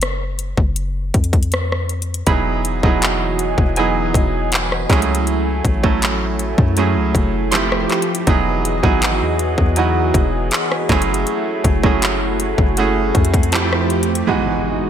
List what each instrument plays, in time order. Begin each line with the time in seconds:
Already playing: 808-style bass F#1
0.02 cross-stick, closed hi-hat
0.39 closed hi-hat
0.57 808-style bass F#1, kick
0.76 closed hi-hat
1.14 808-style bass F2, kick, closed hi-hat
1.24 closed hi-hat
1.33 kick, closed hi-hat
1.43 closed hi-hat
1.52 cross-stick, closed hi-hat
1.72 cross-stick
1.89 closed hi-hat
2.02 closed hi-hat
2.14 closed hi-hat
2.27 808-style bass E1, analog synth pad E3 F#4 D#5 G#5, grand piano F#3 B3 D#4 E4 G#4, synth pluck B5, kick, closed hi-hat
2.65 closed hi-hat
2.83 808-style bass E1, grand piano F#3 B3 D#4 E4 G#4, kick
3.02 clap, closed hi-hat
3.39 closed hi-hat
3.58 808-style bass E1, kick
3.76 grand piano F#3 B3 D#4 E4 G#4, synth pluck G#5, closed hi-hat
4.14 808-style bass E1, kick, closed hi-hat
4.52 clap, closed hi-hat
4.72 cross-stick
4.89 808-style bass C#2, analog synth pad F#3 A3 E4, grand piano F#3 G#3 C#4 E4 G#4, kick, clap, closed hi-hat
4.97 grand piano A3
5.02 closed hi-hat
5.15 closed hi-hat
5.27 closed hi-hat
5.65 808-style bass A1, kick, closed hi-hat
5.83 grand piano F#3 A3 C#4 E4 A4, kick
6.02 clap, closed hi-hat
6.39 closed hi-hat
6.58 808-style bass F#2, kick
6.77 grand piano F#3 A3 C#4 E4 G#4, closed hi-hat
6.96 808-style bass C#2
7.15 808-style bass F1, kick, closed hi-hat
7.51 analog synth pad F3 G4, grand piano F3 A3 C4 E4 G4, synth pluck C6, clap, closed hi-hat
7.72 cross-stick
7.90 clap, closed hi-hat
8.02 closed hi-hat
8.15 closed hi-hat
8.27 808-style bass E1, analog synth pad E3 F#4 G#4 D#5, grand piano F#3 B3 D#4 E4 G#4, kick, closed hi-hat
8.65 closed hi-hat
8.83 808-style bass G#1, grand piano F#3 B3 D#4 E4 G#4, kick
9.02 clap, closed hi-hat
9.21 808-style bass E2
9.39 closed hi-hat
9.58 808-style bass E2, kick
9.76 grand piano F#3 B3 D#4 E4 F#4, closed hi-hat
10.14 808-style bass E1, kick, closed hi-hat
10.51 clap, closed hi-hat
10.72 cross-stick
10.89 808-style bass F#1, grand piano F#3 A3 C#4 E4 G#4, analog synth pad A3 E4 F#4, kick, clap, closed hi-hat
11.02 closed hi-hat
11.14 closed hi-hat
11.27 closed hi-hat, swell
11.64 808-style bass F#1, kick, closed hi-hat
11.83 grand piano F#3 A3 C#4 E4 G#4, kick
12.02 clap, closed hi-hat
12.40 closed hi-hat
12.58 808-style bass F#1, kick
12.77 grand piano A3 C#4 E4 F#4 G#4, closed hi-hat
13.15 808-style bass F2, kick, closed hi-hat
13.25 closed hi-hat
13.34 kick, closed hi-hat
13.43 closed hi-hat
13.52 analog synth pad F3 G4, grand piano F3 A3 C4 E4 G4, synth pluck A5, clap, closed hi-hat
13.73 cross-stick
13.90 closed hi-hat, open hi-hat
14.03 closed hi-hat
14.15 closed hi-hat
14.27 grand piano E3 G#3 B3 D#4 F#4, analog synth pad E3 G#3 D#4 F#4, impact